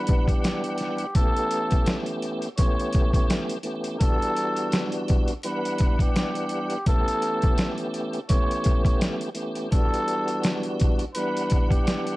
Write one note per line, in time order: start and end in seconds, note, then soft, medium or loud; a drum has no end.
0.00 1.06 E3 medium
0.00 1.06 G3 medium
0.00 1.06 B3 medium
0.00 1.07 D4 medium
0.00 0.24 B4 medium
0.00 1.07 F#5 loud
0.07 kick medium
0.07 closed hi-hat medium
0.28 1.11 G4 medium
0.28 kick medium
0.28 closed hi-hat medium
0.44 snare loud
0.44 closed hi-hat medium
0.64 closed hi-hat medium
0.78 snare soft
0.78 closed hi-hat medium
0.98 closed hi-hat medium
1.15 2.48 E3 loud
1.15 2.49 A3 medium
1.15 2.49 B3 medium
1.15 2.49 C#4 medium
1.15 2.50 G4 loud
1.15 2.03 A4 loud
1.15 kick loud
1.15 closed hi-hat medium
1.36 closed hi-hat medium
1.51 closed hi-hat medium
1.71 kick medium
1.71 closed hi-hat medium
1.86 snare loud
1.86 closed hi-hat medium
2.06 closed hi-hat soft
2.22 closed hi-hat medium
2.42 closed hi-hat medium
2.57 3.58 E3 medium
2.57 3.58 A3 medium
2.57 3.58 B3 medium
2.57 3.59 C#4 medium
2.57 3.59 G4 loud
2.57 3.10 C#5 medium
2.57 kick loud
2.57 closed hi-hat loud
2.79 closed hi-hat medium
2.93 kick medium
2.93 closed hi-hat medium
3.13 3.28 C#5 medium
3.13 kick medium
3.13 closed hi-hat medium
3.30 snare loud
3.30 closed hi-hat medium
3.50 closed hi-hat medium
3.63 3.98 E3 medium
3.63 3.98 A3 medium
3.63 3.98 B3 medium
3.63 3.99 C#4 medium
3.63 3.99 G4 medium
3.63 closed hi-hat medium
3.84 closed hi-hat medium
3.99 5.33 E3 medium
3.99 5.34 G3 medium
3.99 5.34 B3 medium
3.99 5.34 D4 medium
3.99 5.35 F#4 loud
3.99 4.88 A4 loud
3.99 kick loud
3.99 closed hi-hat medium
4.22 closed hi-hat medium
4.36 closed hi-hat medium
4.56 closed hi-hat medium
4.72 snare loud
4.72 closed hi-hat medium
4.92 closed hi-hat soft
5.08 kick medium
5.08 closed hi-hat medium
5.28 closed hi-hat medium
5.43 6.77 E3 medium
5.43 6.77 G3 medium
5.43 6.78 B3 medium
5.43 6.78 D4 medium
5.43 5.97 B4 medium
5.43 6.78 F#5 loud
5.43 closed hi-hat loud
5.65 closed hi-hat medium
5.78 kick loud
5.78 closed hi-hat medium
5.99 6.84 G4 medium
5.99 kick medium
5.99 closed hi-hat medium
6.16 snare loud
6.16 closed hi-hat medium
6.35 closed hi-hat medium
6.49 closed hi-hat medium
6.70 closed hi-hat medium
6.86 8.20 E3 loud
6.86 8.20 A3 medium
6.86 8.20 B3 medium
6.86 8.21 C#4 medium
6.86 8.21 G4 loud
6.86 7.75 A4 loud
6.86 kick loud
6.86 closed hi-hat medium
7.08 closed hi-hat medium
7.22 closed hi-hat medium
7.42 kick medium
7.42 closed hi-hat medium
7.58 snare loud
7.58 closed hi-hat medium
7.78 closed hi-hat medium
7.94 closed hi-hat medium
8.13 closed hi-hat soft
8.29 9.29 E3 medium
8.29 9.29 A3 medium
8.29 9.30 B3 medium
8.29 9.30 C#4 medium
8.29 9.30 G4 loud
8.29 8.82 C#5 loud
8.29 kick loud
8.29 closed hi-hat loud
8.51 closed hi-hat medium
8.64 kick medium
8.64 closed hi-hat medium
8.85 8.99 C#5 medium
8.85 kick medium
8.85 closed hi-hat medium
9.01 snare loud
9.01 closed hi-hat medium
9.21 closed hi-hat medium
9.34 9.69 E3 medium
9.34 9.69 A3 medium
9.34 9.70 B3 medium
9.34 9.70 C#4 medium
9.34 9.70 G4 medium
9.34 closed hi-hat medium
9.55 closed hi-hat medium
9.71 11.05 E3 medium
9.71 11.05 G3 medium
9.71 11.05 B3 medium
9.71 11.06 D4 medium
9.71 11.06 F#4 loud
9.71 10.60 A4 loud
9.71 kick loud
9.71 closed hi-hat medium
9.94 closed hi-hat medium
10.08 closed hi-hat medium
10.28 closed hi-hat medium
10.43 snare loud
10.43 closed hi-hat medium
10.63 closed hi-hat soft
10.80 kick medium
10.80 closed hi-hat medium
10.99 closed hi-hat medium
11.14 12.16 E3 medium
11.14 12.16 G3 medium
11.14 12.16 B3 medium
11.14 12.16 D4 medium
11.14 11.67 B4 medium
11.14 closed hi-hat loud
11.18 12.16 F#5 loud
11.37 closed hi-hat medium
11.50 kick loud
11.50 closed hi-hat medium
11.71 12.16 G4 medium
11.71 kick medium
11.71 closed hi-hat medium
11.87 snare loud
11.87 closed hi-hat medium
12.07 closed hi-hat medium